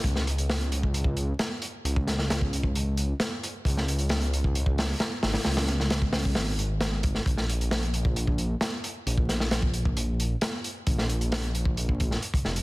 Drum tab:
HH |x-xxoxx-x-x-x-x-|x-x-x-x-x-x-x-x-|x-xxoxx-x-o-x-oo|oox-x-o-o-x-x-x-|
SD |-o--o-------o---|--ooo-------o---|-o--o-----o-o-oo|ooooo-o-o---o--o|
BD |o------o-o------|-o---o-o--------|o------o-o------|-----o-o------o-|

HH |x-xxoxx-x-x-x-x-|x-x-x-x-x-x-x-x-|x-xxoxx-x-x-xx-x|
SD |-o--o-------o---|--ooo-------o---|-o--o------o--o-|
BD |o------o-o------|-o---o-o--------|o------o-oo--o--|